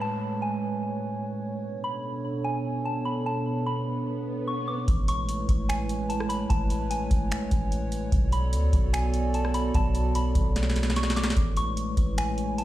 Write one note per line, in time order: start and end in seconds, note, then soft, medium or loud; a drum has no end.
0.00 1.60 A2 medium
0.00 1.60 G#3 medium
0.00 1.60 A3 medium
0.00 1.60 B4 medium
0.00 4.84 C#5 medium
0.00 0.40 A5 loud
0.00 downlifter medium
0.42 1.19 G#5 medium
1.64 4.85 B2 medium
1.64 4.85 B3 medium
1.64 4.85 D4 medium
1.64 4.85 A4 medium
1.84 2.03 B5 medium
2.44 2.83 G#5 medium
2.85 3.05 A5 medium
3.05 3.25 B5 medium
3.26 3.64 A5 medium
3.26 swell medium
3.66 4.04 B5 medium
4.48 4.67 C#6 medium
4.68 4.87 D6 medium
4.88 5.46 A1 loud
4.88 8.09 G#3 medium
4.88 8.09 A3 medium
4.88 8.09 E4 medium
4.88 8.09 B4 medium
4.88 11.33 C#5 medium
4.88 kick loud
4.88 closed hi-hat medium
5.08 5.28 C#6 loud
5.08 closed hi-hat medium
5.29 closed hi-hat medium
5.49 6.46 A1 loud
5.49 kick loud
5.49 closed hi-hat medium
5.69 6.07 G#5 medium
5.69 finger snap loud
5.69 closed hi-hat medium
5.89 closed hi-hat medium
6.09 6.29 A5 medium
6.09 closed hi-hat medium
6.20 cross-stick medium
6.29 6.49 B5 medium
6.29 closed hi-hat medium
6.50 7.08 A1 loud
6.50 6.88 A5 loud
6.50 kick loud
6.50 closed hi-hat medium
6.70 closed hi-hat medium
6.91 7.68 G#5 medium
6.91 closed hi-hat medium
7.11 7.30 A1 loud
7.11 kick loud
7.11 closed hi-hat medium
7.31 finger snap loud
7.31 closed hi-hat medium
7.51 8.10 A1 loud
7.51 kick medium
7.51 closed hi-hat medium
7.72 closed hi-hat medium
7.92 closed hi-hat medium
8.12 8.54 B1 loud
8.12 11.33 B3 medium
8.12 11.33 F#4 medium
8.12 11.33 A4 medium
8.12 11.33 D5 loud
8.12 kick loud
8.12 closed hi-hat medium
8.32 8.52 B5 medium
8.32 closed hi-hat medium
8.53 8.72 D2 loud
8.53 closed hi-hat medium
8.73 9.70 B1 loud
8.73 kick loud
8.73 closed hi-hat medium
8.93 9.31 G#5 medium
8.93 finger snap loud
8.93 closed hi-hat medium
9.14 closed hi-hat medium
9.34 9.53 A5 medium
9.34 closed hi-hat medium
9.45 cross-stick medium
9.54 9.73 B5 medium
9.54 closed hi-hat medium
9.74 10.33 B1 loud
9.74 10.13 A5 loud
9.74 kick loud
9.74 closed hi-hat medium
9.95 closed hi-hat medium
10.15 10.53 B5 medium
10.15 closed hi-hat loud
10.35 11.33 B1 loud
10.35 kick loud
10.35 closed hi-hat medium
10.56 snare medium
10.56 closed hi-hat medium
10.63 snare medium
10.70 snare medium
10.76 snare medium
10.76 closed hi-hat medium
10.83 snare medium
10.90 snare medium
10.96 11.15 C#6 medium
10.96 snare medium
10.96 closed hi-hat medium
11.03 snare medium
11.10 snare loud
11.16 11.35 D6 medium
11.16 snare medium
11.16 closed hi-hat medium
11.24 snare loud
11.30 snare loud
11.37 11.95 A1 loud
11.37 12.64 G#3 medium
11.37 12.64 A3 medium
11.37 12.64 E4 medium
11.37 12.64 B4 medium
11.37 12.64 C#5 loud
11.37 kick loud
11.37 closed hi-hat medium
11.57 11.76 C#6 loud
11.57 closed hi-hat medium
11.77 closed hi-hat medium
11.97 12.64 A1 loud
11.97 kick loud
11.97 closed hi-hat medium
12.18 12.56 G#5 medium
12.18 finger snap loud
12.18 closed hi-hat medium
12.38 closed hi-hat medium
12.58 12.64 A5 medium
12.58 closed hi-hat medium